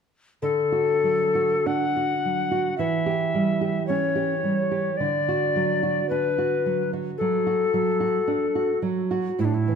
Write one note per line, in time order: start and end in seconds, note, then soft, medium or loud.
0.42 2.75 D3 soft
0.42 1.68 A4 medium
0.72 1.23 F#4 soft
1.04 1.55 F#3 soft
1.35 1.84 F#4 soft
1.66 2.13 D4 soft
1.66 2.77 F#5 medium
1.96 2.41 F#4 soft
2.25 2.69 F#3 soft
2.51 2.79 F#4 soft
2.78 4.96 E3 soft
2.78 3.86 E5 medium
3.06 3.50 G4 soft
3.35 3.78 G3 soft
3.61 4.05 G4 soft
3.87 4.33 C#4 soft
3.87 4.98 C#5 medium
4.15 4.60 G4 soft
4.44 4.89 G3 soft
4.71 5.00 G4 soft
4.97 7.16 D3 soft
4.97 6.09 D5 medium
5.29 5.73 F#4 soft
5.56 6.00 F#3 soft
5.83 6.27 F#4 soft
6.09 6.55 D4 soft
6.09 6.91 B4 medium
6.38 6.82 F#4 soft
6.66 7.09 F#3 soft
6.93 7.36 F#4 soft
7.18 7.64 F#3 soft
7.18 8.78 A4 soft
7.47 7.90 F#4 soft
7.74 8.17 F#3 soft
8.00 8.45 F#4 soft
8.28 8.72 D4 soft
8.55 9.00 F#4 soft
8.82 9.28 F#3 soft
9.11 9.39 F#4 soft
9.39 9.75 A2 soft
9.39 9.46 E4 soft
9.45 9.56 D4 soft
9.54 9.75 E4 medium
9.68 9.75 E3 soft